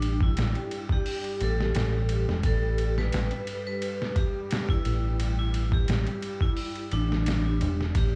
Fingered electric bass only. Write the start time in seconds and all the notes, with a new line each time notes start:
Already playing: A1
0.38 A1
1.41 A1
1.75 A1
2.28 E1
2.44 A1
3.14 A1
4.86 A1
5.89 A1
6.92 A1
7.62 E1
7.95 A1